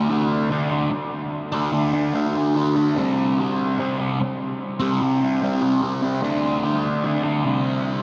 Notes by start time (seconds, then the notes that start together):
Already playing: D4
0.09 D3 A3 D4
0.50 D3 A3 D4
0.70 A3 D4
0.90 muted distorted electric guitar stroke
1.52 A3 D4
1.71 D3 A3 D4
1.93 A3 D4
2.13 D3 A3 D4
2.35 A3 D4
2.54 D3 A3 D4
2.76 A3 D4
2.96 C3 G3 C4
3.38 C3 G3 C4
3.77 C3 G3 C4
3.99 G3 C4
4.20 muted distorted electric guitar stroke
4.79 G3 C4
5.01 C3 G3 C4
5.21 G3 C4
5.41 C3 G3 C4
5.62 G3 C4
5.82 C3 G3 C4
6.02 G3 C4
6.23 D3 A3 D4
6.63 D3 A3 D4
7.04 D3 A3 D4
7.23 A3 D4
7.44 C3 G3 C4